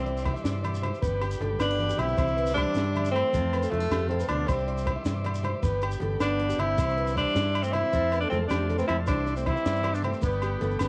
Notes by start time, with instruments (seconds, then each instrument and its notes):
Already playing: fingered electric bass C2, steel-string acoustic guitar C3 G3 D4, trombone G3, tenor saxophone C4, transistor combo organ E5 C6 D6
0.05 steel-string acoustic guitar E4, clean electric guitar D5, closed hi-hat
0.17 low conga, shekere
0.25 steel-string acoustic guitar E3 G3, muted clean electric guitar stroke, kick, closed hi-hat, high conga, low conga, low agogo
0.34 clean electric guitar E5, low conga, shekere
0.44 fingered electric bass G2, steel-string acoustic guitar C3, clean electric guitar D5, snare, closed hi-hat, shekere
0.63 steel-string acoustic guitar B2, clean electric guitar D5, closed hi-hat, high conga, low conga, low agogo, shekere
0.75 shekere
0.82 clean electric guitar C5, closed hi-hat, low conga, low agogo
0.94 low conga, shekere
1.02 fingered electric bass G1, steel-string acoustic guitar G2 B3 D4 G4, clean electric guitar B4, transistor combo organ G5 B5, kick, closed hi-hat, high conga, low conga, shekere
1.21 clean electric guitar G4, steel-string acoustic guitar G4, snare, closed hi-hat, low agogo
1.31 shekere
1.40 fingered electric bass G1, steel-string acoustic guitar D3 B3, clean electric guitar A4, closed hi-hat, high conga, low conga
1.59 fingered electric bass G1, trombone B3, tenor saxophone D4, steel-string acoustic guitar E4, clean electric guitar B4, snare, closed hi-hat, low agogo, shekere
1.71 steel-string acoustic guitar G4, low conga
1.79 steel-string acoustic guitar G2 B3, closed hi-hat, high conga
1.89 clean electric guitar G4, shekere
1.98 fingered electric bass B1, trombone C4, steel-string acoustic guitar D4, tenor saxophone E4, clean electric guitar G4, closed hi-hat, low conga, low agogo, shekere
2.08 low conga, shekere
2.17 fingered electric bass C2, steel-string acoustic guitar C3 G3, clean electric guitar C5, transistor combo organ E5 C6, kick, closed hi-hat, high conga, low agogo, shekere
2.21 steel-string acoustic guitar D4
2.27 shekere
2.37 steel-string acoustic guitar B3, clean electric guitar B4, closed hi-hat
2.46 steel-string acoustic guitar D4, shekere
2.54 steel-string acoustic guitar E3 G3, trombone G3, tenor saxophone D4, clean electric guitar C5, kick, closed hi-hat, high conga, low conga, low agogo
2.67 low conga
2.74 fingered electric bass G2, steel-string acoustic guitar C3, clean electric guitar D5, snare, closed hi-hat, shekere
2.93 steel-string acoustic guitar D3, clean electric guitar E5, closed hi-hat, high conga, low conga, low agogo
3.05 shekere
3.11 steel-string acoustic guitar E3, trombone A3, tenor saxophone C4, clean electric guitar C5
3.16 closed hi-hat, low agogo
3.33 steel-string acoustic guitar F2 A3 C4 F4, fingered electric bass F2, clean electric guitar C5, transistor combo organ F5 A5, kick, closed hi-hat, high conga, shekere
3.52 steel-string acoustic guitar F4, clean electric guitar B4, snare, closed hi-hat, low agogo
3.63 clean electric guitar A4, shekere
3.69 fingered electric bass F2, trombone F3, steel-string acoustic guitar F3 G3, tenor saxophone A3, closed hi-hat, high conga, low conga
3.80 steel-string acoustic guitar A3, muted clean electric guitar stroke
3.91 fingered electric bass F2, steel-string acoustic guitar G2, clean electric guitar G4, snare, closed hi-hat, low agogo, shekere
4.09 steel-string acoustic guitar A2, trombone A3, tenor saxophone C4, clean electric guitar A4, closed hi-hat, high conga
4.20 clean electric guitar B4, shekere
4.28 fingered electric bass D2, steel-string acoustic guitar B2, trombone B3, tenor saxophone D4, clean electric guitar C5, closed hi-hat, low conga, low agogo
4.40 clean electric guitar D5
4.47 fingered electric bass C2, steel-string acoustic guitar C3 G3 D4 E4, trombone G3, tenor saxophone C4, clean electric guitar C5, transistor combo organ E5, kick, closed hi-hat, high conga, low agogo, shekere
4.51 transistor combo organ D6
4.58 shekere
4.68 steel-string acoustic guitar E4, clean electric guitar D5, closed hi-hat
4.78 shekere
4.86 steel-string acoustic guitar E3 G3, clean electric guitar C5, kick, closed hi-hat, high conga, low conga, low agogo
4.96 clean electric guitar E5, low conga
5.05 fingered electric bass G2, steel-string acoustic guitar C3, clean electric guitar D5, snare, closed hi-hat, shekere
5.24 steel-string acoustic guitar B2, clean electric guitar D5, closed hi-hat, high conga, low conga, low agogo
5.35 shekere
5.43 steel-string acoustic guitar A2, clean electric guitar C5, closed hi-hat, low conga, low agogo
5.62 fingered electric bass G1, steel-string acoustic guitar G2 B3 D4 G4, clean electric guitar B4, transistor combo organ G5 B5, kick, closed hi-hat, high conga, shekere
5.82 clean electric guitar G4, steel-string acoustic guitar G4, closed hi-hat, low agogo
5.91 shekere
6.00 fingered electric bass G1, steel-string acoustic guitar D3 B3, clean electric guitar A4, closed hi-hat, high conga, low conga
6.20 fingered electric bass G1, trombone B3, tenor saxophone D4, clean electric guitar B4, muted steel-string acoustic guitar stroke, snare, closed hi-hat, low agogo, shekere
6.39 steel-string acoustic guitar G2 B3, closed hi-hat, high conga
6.49 clean electric guitar G4, shekere
6.58 fingered electric bass G1, trombone C4, steel-string acoustic guitar D4, tenor saxophone E4, muted clean electric guitar stroke, closed hi-hat, low conga, low agogo
6.77 fingered electric bass C2, steel-string acoustic guitar C3 G3 D4, clean electric guitar C5, transistor combo organ E5 C6, kick, closed hi-hat, high conga, low agogo, shekere
6.89 shekere
6.97 steel-string acoustic guitar D4, clean electric guitar B4, closed hi-hat
7.07 shekere
7.15 steel-string acoustic guitar E3 G3, trombone G3, tenor saxophone D4, clean electric guitar C5, kick, closed hi-hat, high conga, low agogo
7.25 low conga
7.35 fingered electric bass G2, steel-string acoustic guitar E4, clean electric guitar D5, snare, closed hi-hat, shekere
7.54 steel-string acoustic guitar G2 G3, clean electric guitar E5, closed hi-hat, low agogo
7.63 trombone A3, tenor saxophone C4, shekere
7.73 trombone C4, steel-string acoustic guitar D4, tenor saxophone E4, clean electric guitar C5, closed hi-hat, low conga, low agogo
7.93 fingered electric bass F2, steel-string acoustic guitar F2 A3 C4, clean electric guitar C5, transistor combo organ F5 A5, kick, closed hi-hat, high conga, shekere
8.12 steel-string acoustic guitar C4, clean electric guitar B4, snare, closed hi-hat, low agogo
8.20 trombone B3, tenor saxophone D4, clean electric guitar A4
8.30 fingered electric bass F2, steel-string acoustic guitar F3 A3, trombone A3, tenor saxophone C4, closed hi-hat, high conga, low conga
8.41 clean electric guitar A4
8.48 fingered electric bass F2, steel-string acoustic guitar C4, tenor saxophone D4, clean electric guitar G4, snare, closed hi-hat, low agogo, shekere
8.52 trombone A3
8.69 steel-string acoustic guitar C3 A3, clean electric guitar A4, closed hi-hat, high conga
8.79 trombone A3, tenor saxophone C4, clean electric guitar B4, shekere
8.88 fingered electric bass F2, trombone C4, steel-string acoustic guitar C4, tenor saxophone E4, clean electric guitar C5, closed hi-hat, low conga, low agogo
8.98 clean electric guitar D5
9.07 fingered electric bass C2, steel-string acoustic guitar C3 G3 D4, trombone G3, tenor saxophone D4, clean electric guitar C5, transistor combo organ E5 D6, kick, closed hi-hat, high conga, low agogo, shekere
9.11 steel-string acoustic guitar E4
9.27 steel-string acoustic guitar E4, clean electric guitar D5, closed hi-hat, shekere
9.36 trombone A3, tenor saxophone C4, shekere
9.46 steel-string acoustic guitar E3 G3, trombone C4, tenor saxophone E4, clean electric guitar C5, kick, closed hi-hat, high conga, low conga, low agogo
9.55 clean electric guitar E5, shekere
9.65 fingered electric bass G2, steel-string acoustic guitar D4, clean electric guitar D5, snare, closed hi-hat, shekere
9.76 shekere
9.83 steel-string acoustic guitar G3, clean electric guitar D5, closed hi-hat, high conga, low conga, low agogo
9.94 trombone B3, tenor saxophone D4, shekere
10.02 trombone A3, tenor saxophone C4, steel-string acoustic guitar D4, closed hi-hat, low conga, low agogo
10.13 low conga, shekere
10.21 fingered electric bass G1, steel-string acoustic guitar G2 B3 D4, trombone G3, tenor saxophone B3, clean electric guitar B4, transistor combo organ G5 B5, kick, closed hi-hat, high conga, low conga, shekere
10.26 steel-string acoustic guitar G4
10.41 steel-string acoustic guitar G4, clean electric guitar G4, snare, closed hi-hat, low agogo, shekere
10.61 fingered electric bass G1, steel-string acoustic guitar D3 B3, clean electric guitar A4, closed hi-hat, high conga, low conga, shekere
10.71 shekere
10.79 fingered electric bass G1, steel-string acoustic guitar G4, clean electric guitar B4, snare, closed hi-hat, low agogo, shekere